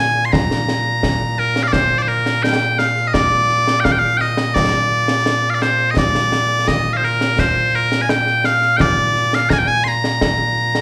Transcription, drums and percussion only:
0, 0, Header, 1, 2, 480
1, 0, Start_track
1, 0, Tempo, 705882
1, 1184, Time_signature, 4, 2, 24, 8
1, 7354, End_track
2, 0, Start_track
2, 0, Title_t, "Drums"
2, 225, Note_on_c, 9, 35, 65
2, 225, Note_on_c, 9, 38, 96
2, 293, Note_off_c, 9, 35, 0
2, 293, Note_off_c, 9, 38, 0
2, 349, Note_on_c, 9, 38, 75
2, 417, Note_off_c, 9, 38, 0
2, 466, Note_on_c, 9, 38, 80
2, 534, Note_off_c, 9, 38, 0
2, 702, Note_on_c, 9, 35, 60
2, 702, Note_on_c, 9, 38, 95
2, 770, Note_off_c, 9, 35, 0
2, 770, Note_off_c, 9, 38, 0
2, 1061, Note_on_c, 9, 38, 80
2, 1129, Note_off_c, 9, 38, 0
2, 1176, Note_on_c, 9, 35, 54
2, 1176, Note_on_c, 9, 38, 83
2, 1244, Note_off_c, 9, 35, 0
2, 1244, Note_off_c, 9, 38, 0
2, 1538, Note_on_c, 9, 38, 73
2, 1606, Note_off_c, 9, 38, 0
2, 1661, Note_on_c, 9, 38, 96
2, 1729, Note_off_c, 9, 38, 0
2, 1779, Note_on_c, 9, 38, 31
2, 1847, Note_off_c, 9, 38, 0
2, 1897, Note_on_c, 9, 38, 75
2, 1965, Note_off_c, 9, 38, 0
2, 2019, Note_on_c, 9, 38, 25
2, 2087, Note_off_c, 9, 38, 0
2, 2136, Note_on_c, 9, 35, 57
2, 2136, Note_on_c, 9, 38, 99
2, 2204, Note_off_c, 9, 35, 0
2, 2204, Note_off_c, 9, 38, 0
2, 2378, Note_on_c, 9, 38, 27
2, 2446, Note_off_c, 9, 38, 0
2, 2500, Note_on_c, 9, 38, 80
2, 2568, Note_off_c, 9, 38, 0
2, 2618, Note_on_c, 9, 35, 51
2, 2618, Note_on_c, 9, 38, 88
2, 2686, Note_off_c, 9, 35, 0
2, 2686, Note_off_c, 9, 38, 0
2, 2861, Note_on_c, 9, 38, 35
2, 2929, Note_off_c, 9, 38, 0
2, 2974, Note_on_c, 9, 38, 86
2, 3042, Note_off_c, 9, 38, 0
2, 3099, Note_on_c, 9, 35, 60
2, 3099, Note_on_c, 9, 38, 105
2, 3167, Note_off_c, 9, 35, 0
2, 3167, Note_off_c, 9, 38, 0
2, 3456, Note_on_c, 9, 38, 88
2, 3524, Note_off_c, 9, 38, 0
2, 3577, Note_on_c, 9, 38, 100
2, 3645, Note_off_c, 9, 38, 0
2, 3822, Note_on_c, 9, 38, 77
2, 3890, Note_off_c, 9, 38, 0
2, 4057, Note_on_c, 9, 35, 66
2, 4057, Note_on_c, 9, 38, 97
2, 4125, Note_off_c, 9, 35, 0
2, 4125, Note_off_c, 9, 38, 0
2, 4182, Note_on_c, 9, 38, 68
2, 4250, Note_off_c, 9, 38, 0
2, 4300, Note_on_c, 9, 38, 74
2, 4368, Note_off_c, 9, 38, 0
2, 4540, Note_on_c, 9, 35, 54
2, 4540, Note_on_c, 9, 38, 94
2, 4608, Note_off_c, 9, 35, 0
2, 4608, Note_off_c, 9, 38, 0
2, 4784, Note_on_c, 9, 38, 31
2, 4852, Note_off_c, 9, 38, 0
2, 4904, Note_on_c, 9, 38, 79
2, 4972, Note_off_c, 9, 38, 0
2, 5022, Note_on_c, 9, 35, 59
2, 5022, Note_on_c, 9, 38, 102
2, 5090, Note_off_c, 9, 35, 0
2, 5090, Note_off_c, 9, 38, 0
2, 5384, Note_on_c, 9, 38, 83
2, 5452, Note_off_c, 9, 38, 0
2, 5504, Note_on_c, 9, 38, 100
2, 5572, Note_off_c, 9, 38, 0
2, 5624, Note_on_c, 9, 38, 30
2, 5692, Note_off_c, 9, 38, 0
2, 5741, Note_on_c, 9, 38, 75
2, 5809, Note_off_c, 9, 38, 0
2, 5862, Note_on_c, 9, 38, 29
2, 5930, Note_off_c, 9, 38, 0
2, 5985, Note_on_c, 9, 35, 64
2, 5985, Note_on_c, 9, 38, 91
2, 6053, Note_off_c, 9, 35, 0
2, 6053, Note_off_c, 9, 38, 0
2, 6226, Note_on_c, 9, 38, 25
2, 6294, Note_off_c, 9, 38, 0
2, 6345, Note_on_c, 9, 38, 80
2, 6413, Note_off_c, 9, 38, 0
2, 6462, Note_on_c, 9, 35, 55
2, 6462, Note_on_c, 9, 38, 95
2, 6530, Note_off_c, 9, 35, 0
2, 6530, Note_off_c, 9, 38, 0
2, 6707, Note_on_c, 9, 38, 29
2, 6775, Note_off_c, 9, 38, 0
2, 6828, Note_on_c, 9, 38, 80
2, 6896, Note_off_c, 9, 38, 0
2, 6946, Note_on_c, 9, 35, 57
2, 6946, Note_on_c, 9, 38, 106
2, 7014, Note_off_c, 9, 35, 0
2, 7014, Note_off_c, 9, 38, 0
2, 7309, Note_on_c, 9, 38, 80
2, 7354, Note_off_c, 9, 38, 0
2, 7354, End_track
0, 0, End_of_file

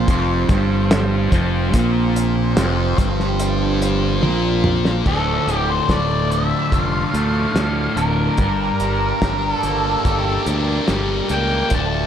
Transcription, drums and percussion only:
0, 0, Header, 1, 2, 480
1, 0, Start_track
1, 0, Key_signature, -1, "minor"
1, 0, Tempo, 831025
1, 1007, Time_signature, 4, 2, 24, 8
1, 6970, End_track
2, 0, Start_track
2, 0, Title_t, "Drums"
2, 46, Note_on_c, 9, 42, 86
2, 47, Note_on_c, 9, 36, 94
2, 104, Note_off_c, 9, 36, 0
2, 104, Note_off_c, 9, 42, 0
2, 283, Note_on_c, 9, 42, 72
2, 285, Note_on_c, 9, 36, 95
2, 341, Note_off_c, 9, 42, 0
2, 343, Note_off_c, 9, 36, 0
2, 525, Note_on_c, 9, 38, 118
2, 525, Note_on_c, 9, 42, 88
2, 583, Note_off_c, 9, 38, 0
2, 583, Note_off_c, 9, 42, 0
2, 763, Note_on_c, 9, 36, 110
2, 763, Note_on_c, 9, 42, 78
2, 821, Note_off_c, 9, 36, 0
2, 821, Note_off_c, 9, 42, 0
2, 1003, Note_on_c, 9, 42, 97
2, 1004, Note_on_c, 9, 36, 92
2, 1060, Note_off_c, 9, 42, 0
2, 1062, Note_off_c, 9, 36, 0
2, 1249, Note_on_c, 9, 42, 66
2, 1307, Note_off_c, 9, 42, 0
2, 1483, Note_on_c, 9, 38, 105
2, 1483, Note_on_c, 9, 42, 97
2, 1541, Note_off_c, 9, 38, 0
2, 1541, Note_off_c, 9, 42, 0
2, 1723, Note_on_c, 9, 36, 112
2, 1724, Note_on_c, 9, 42, 69
2, 1781, Note_off_c, 9, 36, 0
2, 1781, Note_off_c, 9, 42, 0
2, 1847, Note_on_c, 9, 38, 30
2, 1905, Note_off_c, 9, 38, 0
2, 1961, Note_on_c, 9, 42, 97
2, 2019, Note_off_c, 9, 42, 0
2, 2205, Note_on_c, 9, 42, 76
2, 2263, Note_off_c, 9, 42, 0
2, 2442, Note_on_c, 9, 48, 62
2, 2500, Note_off_c, 9, 48, 0
2, 2679, Note_on_c, 9, 45, 84
2, 2737, Note_off_c, 9, 45, 0
2, 2803, Note_on_c, 9, 38, 80
2, 2861, Note_off_c, 9, 38, 0
2, 2922, Note_on_c, 9, 36, 95
2, 2923, Note_on_c, 9, 49, 77
2, 2980, Note_off_c, 9, 36, 0
2, 2981, Note_off_c, 9, 49, 0
2, 3167, Note_on_c, 9, 42, 48
2, 3225, Note_off_c, 9, 42, 0
2, 3402, Note_on_c, 9, 36, 69
2, 3405, Note_on_c, 9, 38, 94
2, 3405, Note_on_c, 9, 42, 68
2, 3460, Note_off_c, 9, 36, 0
2, 3462, Note_off_c, 9, 38, 0
2, 3462, Note_off_c, 9, 42, 0
2, 3648, Note_on_c, 9, 42, 52
2, 3706, Note_off_c, 9, 42, 0
2, 3883, Note_on_c, 9, 36, 103
2, 3886, Note_on_c, 9, 42, 76
2, 3941, Note_off_c, 9, 36, 0
2, 3944, Note_off_c, 9, 42, 0
2, 4126, Note_on_c, 9, 42, 55
2, 4184, Note_off_c, 9, 42, 0
2, 4365, Note_on_c, 9, 38, 87
2, 4365, Note_on_c, 9, 42, 82
2, 4422, Note_off_c, 9, 38, 0
2, 4422, Note_off_c, 9, 42, 0
2, 4603, Note_on_c, 9, 42, 51
2, 4661, Note_off_c, 9, 42, 0
2, 4837, Note_on_c, 9, 42, 69
2, 4843, Note_on_c, 9, 36, 102
2, 4895, Note_off_c, 9, 42, 0
2, 4900, Note_off_c, 9, 36, 0
2, 5082, Note_on_c, 9, 42, 55
2, 5139, Note_off_c, 9, 42, 0
2, 5324, Note_on_c, 9, 36, 73
2, 5324, Note_on_c, 9, 38, 96
2, 5324, Note_on_c, 9, 42, 69
2, 5382, Note_off_c, 9, 36, 0
2, 5382, Note_off_c, 9, 38, 0
2, 5382, Note_off_c, 9, 42, 0
2, 5563, Note_on_c, 9, 42, 64
2, 5621, Note_off_c, 9, 42, 0
2, 5805, Note_on_c, 9, 36, 91
2, 5805, Note_on_c, 9, 42, 69
2, 5862, Note_off_c, 9, 42, 0
2, 5863, Note_off_c, 9, 36, 0
2, 6044, Note_on_c, 9, 42, 56
2, 6102, Note_off_c, 9, 42, 0
2, 6283, Note_on_c, 9, 38, 85
2, 6283, Note_on_c, 9, 42, 69
2, 6341, Note_off_c, 9, 38, 0
2, 6341, Note_off_c, 9, 42, 0
2, 6522, Note_on_c, 9, 42, 54
2, 6580, Note_off_c, 9, 42, 0
2, 6758, Note_on_c, 9, 42, 75
2, 6766, Note_on_c, 9, 36, 81
2, 6816, Note_off_c, 9, 42, 0
2, 6824, Note_off_c, 9, 36, 0
2, 6970, End_track
0, 0, End_of_file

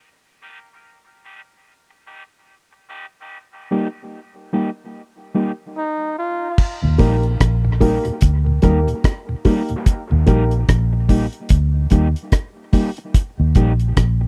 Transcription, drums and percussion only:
0, 0, Header, 1, 2, 480
1, 0, Start_track
1, 0, Key_signature, -3, "major"
1, 0, Tempo, 820793
1, 8, Time_signature, 4, 2, 24, 8
1, 8349, End_track
2, 0, Start_track
2, 0, Title_t, "Drums"
2, 3848, Note_on_c, 9, 49, 99
2, 3849, Note_on_c, 9, 36, 114
2, 3907, Note_off_c, 9, 36, 0
2, 3907, Note_off_c, 9, 49, 0
2, 4084, Note_on_c, 9, 46, 53
2, 4090, Note_on_c, 9, 36, 99
2, 4143, Note_off_c, 9, 46, 0
2, 4148, Note_off_c, 9, 36, 0
2, 4230, Note_on_c, 9, 42, 47
2, 4288, Note_off_c, 9, 42, 0
2, 4330, Note_on_c, 9, 42, 89
2, 4331, Note_on_c, 9, 36, 104
2, 4333, Note_on_c, 9, 37, 106
2, 4389, Note_off_c, 9, 36, 0
2, 4389, Note_off_c, 9, 42, 0
2, 4391, Note_off_c, 9, 37, 0
2, 4568, Note_on_c, 9, 36, 77
2, 4569, Note_on_c, 9, 46, 69
2, 4626, Note_off_c, 9, 36, 0
2, 4628, Note_off_c, 9, 46, 0
2, 4707, Note_on_c, 9, 42, 54
2, 4765, Note_off_c, 9, 42, 0
2, 4800, Note_on_c, 9, 42, 91
2, 4808, Note_on_c, 9, 36, 108
2, 4858, Note_off_c, 9, 42, 0
2, 4867, Note_off_c, 9, 36, 0
2, 5042, Note_on_c, 9, 42, 70
2, 5050, Note_on_c, 9, 36, 86
2, 5100, Note_off_c, 9, 42, 0
2, 5108, Note_off_c, 9, 36, 0
2, 5193, Note_on_c, 9, 42, 45
2, 5252, Note_off_c, 9, 42, 0
2, 5288, Note_on_c, 9, 36, 114
2, 5288, Note_on_c, 9, 42, 78
2, 5293, Note_on_c, 9, 37, 103
2, 5346, Note_off_c, 9, 42, 0
2, 5347, Note_off_c, 9, 36, 0
2, 5352, Note_off_c, 9, 37, 0
2, 5525, Note_on_c, 9, 46, 80
2, 5528, Note_on_c, 9, 36, 90
2, 5583, Note_off_c, 9, 46, 0
2, 5586, Note_off_c, 9, 36, 0
2, 5665, Note_on_c, 9, 42, 45
2, 5723, Note_off_c, 9, 42, 0
2, 5767, Note_on_c, 9, 42, 99
2, 5768, Note_on_c, 9, 36, 113
2, 5825, Note_off_c, 9, 42, 0
2, 5827, Note_off_c, 9, 36, 0
2, 6004, Note_on_c, 9, 42, 70
2, 6009, Note_on_c, 9, 36, 97
2, 6062, Note_off_c, 9, 42, 0
2, 6067, Note_off_c, 9, 36, 0
2, 6148, Note_on_c, 9, 42, 46
2, 6206, Note_off_c, 9, 42, 0
2, 6249, Note_on_c, 9, 42, 91
2, 6250, Note_on_c, 9, 36, 115
2, 6252, Note_on_c, 9, 37, 102
2, 6308, Note_off_c, 9, 42, 0
2, 6309, Note_off_c, 9, 36, 0
2, 6311, Note_off_c, 9, 37, 0
2, 6486, Note_on_c, 9, 36, 76
2, 6487, Note_on_c, 9, 46, 67
2, 6545, Note_off_c, 9, 36, 0
2, 6545, Note_off_c, 9, 46, 0
2, 6624, Note_on_c, 9, 42, 52
2, 6683, Note_off_c, 9, 42, 0
2, 6719, Note_on_c, 9, 42, 91
2, 6728, Note_on_c, 9, 36, 109
2, 6778, Note_off_c, 9, 42, 0
2, 6786, Note_off_c, 9, 36, 0
2, 6960, Note_on_c, 9, 42, 70
2, 6968, Note_on_c, 9, 36, 87
2, 7019, Note_off_c, 9, 42, 0
2, 7027, Note_off_c, 9, 36, 0
2, 7112, Note_on_c, 9, 42, 46
2, 7170, Note_off_c, 9, 42, 0
2, 7204, Note_on_c, 9, 42, 85
2, 7206, Note_on_c, 9, 36, 106
2, 7210, Note_on_c, 9, 37, 102
2, 7263, Note_off_c, 9, 42, 0
2, 7265, Note_off_c, 9, 36, 0
2, 7268, Note_off_c, 9, 37, 0
2, 7444, Note_on_c, 9, 46, 83
2, 7446, Note_on_c, 9, 36, 87
2, 7502, Note_off_c, 9, 46, 0
2, 7505, Note_off_c, 9, 36, 0
2, 7584, Note_on_c, 9, 42, 50
2, 7642, Note_off_c, 9, 42, 0
2, 7687, Note_on_c, 9, 36, 119
2, 7687, Note_on_c, 9, 42, 105
2, 7746, Note_off_c, 9, 36, 0
2, 7746, Note_off_c, 9, 42, 0
2, 7923, Note_on_c, 9, 42, 71
2, 7928, Note_on_c, 9, 36, 98
2, 7982, Note_off_c, 9, 42, 0
2, 7986, Note_off_c, 9, 36, 0
2, 8067, Note_on_c, 9, 42, 47
2, 8126, Note_off_c, 9, 42, 0
2, 8168, Note_on_c, 9, 42, 91
2, 8169, Note_on_c, 9, 36, 105
2, 8171, Note_on_c, 9, 37, 111
2, 8227, Note_off_c, 9, 36, 0
2, 8227, Note_off_c, 9, 42, 0
2, 8230, Note_off_c, 9, 37, 0
2, 8349, End_track
0, 0, End_of_file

